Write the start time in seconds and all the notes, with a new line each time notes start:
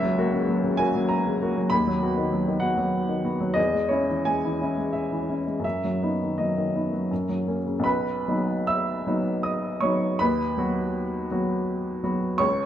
Already playing: C#2 E5
0.03 F#3
0.18 A#3 F#4
0.33 C#3
0.48 F#3
0.63 C#3
0.77 A#3 F#4 G#5
0.95 F#3
1.09 A#5
1.27 C#3
1.42 A#3 F#4
1.57 F#3
1.70 D#2 B5
1.87 F#3
2.02 B3 F#4
2.17 D#3
2.32 F#3
2.48 D#3
2.60 B3 F#4 F#5
2.77 F#3
3.09 D#3
3.24 B3 F#4
3.40 F#3
3.54 E2 D#5
3.73 G#3
3.89 C#4 E4 C#5
4.09 E3
4.25 G#3 G#5
4.45 E3
4.61 C#4 E4
4.78 G#3
4.93 E5
5.11 E3
5.29 C#4 E4
5.47 G#3
5.60 F#2
5.64 E5
5.84 F#3
6.03 B3 D#4
6.22 D#3
6.38 F#3 D#5
6.58 D#3
6.75 B3 D#4
6.93 F#3
7.11 F#2
7.29 F#3
7.48 A#3 C#4
7.66 C#3
7.79 B1
7.84 B4 B5
8.28 F#3 B3 D#4
8.67 E5 E6
9.07 F#3 B3 D#4
9.43 D#5 D#6
9.81 F#3 B3 D#4 C#5 C#6
10.19 D#2 B4 B5
10.57 F#3 B3 F#4
11.31 F#3 B3 F#4
12.03 F#3 B3 F#4
12.38 C#2 C#5 C#6